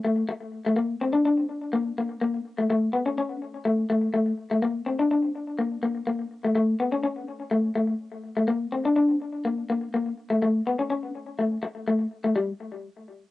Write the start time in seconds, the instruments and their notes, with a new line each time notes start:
0.04 clean electric guitar A3
0.29 muted clean electric guitar stroke
0.66 clean electric guitar A3
0.76 clean electric guitar A#3
1.01 clean electric guitar C4
1.13 clean electric guitar D4
1.25 clean electric guitar D4
1.73 clean electric guitar A#3
1.98 clean electric guitar A#3
2.21 clean electric guitar A#3
2.58 clean electric guitar A3
2.70 clean electric guitar A3
2.93 clean electric guitar B3
3.06 clean electric guitar C#4
3.18 clean electric guitar C#4
3.65 clean electric guitar A3
3.90 clean electric guitar A3
4.14 clean electric guitar A3
4.51 clean electric guitar A3
4.62 clean electric guitar A#3
4.86 clean electric guitar C4
4.99 clean electric guitar D4
5.11 clean electric guitar D4
5.59 clean electric guitar A#3
5.83 clean electric guitar A#3
6.07 clean electric guitar A#3
6.44 clean electric guitar A3
6.55 clean electric guitar A3
6.80 clean electric guitar B3
6.92 clean electric guitar C#4
7.04 clean electric guitar C#4
7.51 clean electric guitar A3
7.75 clean electric guitar A3
8.37 clean electric guitar A3
8.48 clean electric guitar A#3
8.72 clean electric guitar C4
8.86 clean electric guitar D4
8.96 clean electric guitar D4
9.45 clean electric guitar A#3
9.70 clean electric guitar A#3
9.94 clean electric guitar A#3
10.30 clean electric guitar A3
10.42 clean electric guitar A3
10.67 clean electric guitar B3
10.79 clean electric guitar C#4
10.90 clean electric guitar C#4
11.39 clean electric guitar A3
11.63 muted clean electric guitar stroke
11.88 clean electric guitar A3
12.24 clean electric guitar A3
12.36 clean electric guitar G3